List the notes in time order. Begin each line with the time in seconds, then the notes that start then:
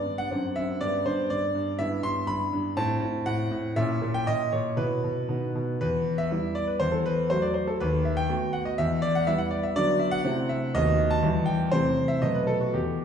Already playing: G2 B3 D4 D5
0.06 G2
0.18 F#5
0.31 F#2 C4 D4
0.56 F#2 E5
0.81 G2 B3 D4 D5
1.06 G2 C5
1.30 G2 D5
1.55 G2
1.79 G2 B3 E4 E5
2.03 G2 C6
2.27 G2 B5
2.53 G2
2.77 A2 C4 E4 A5
3.01 A2
3.26 A2 F#5
3.51 A2
3.76 A#2 C#4 E4 E5
4.02 A#2
4.14 G5
4.27 A#2 D#5
4.52 A#2 C#5
4.77 B2 B3 E4 B4
5.04 B2
5.29 B2 B3 D#4
5.56 B2
5.81 E2 B4
6.18 E5
6.31 G3 B3 E4
6.55 D5
6.67 B4
6.80 E2 C5
6.92 A4
7.06 B4
7.30 F#3 A3 F#4 C5
7.42 D5
7.54 C5
7.67 A4
7.80 D#2 B4
8.05 E5
8.17 G5
8.29 A3 B3 F#4
8.53 F#5
8.65 D#5
8.78 E2 E5
9.02 D5
9.15 F#5
9.27 G3 B3 E4 E5
9.38 F#5
9.51 D5
9.63 E5
9.76 D3 F#3 B3 F#4 D5
9.99 E5
10.11 F#5
10.24 C3 A3 C4 E4
10.49 E5
10.75 D#2 A3 B3 F#4 D#5
11.10 A5
11.22 E2 G3 B3 E4
11.46 G5
11.71 C3 E3 A3 E4 C5
12.08 E5
12.22 B2 F#3 A3 B3 D#5
12.35 B4
12.47 A4
12.61 F#4
12.74 E2 G4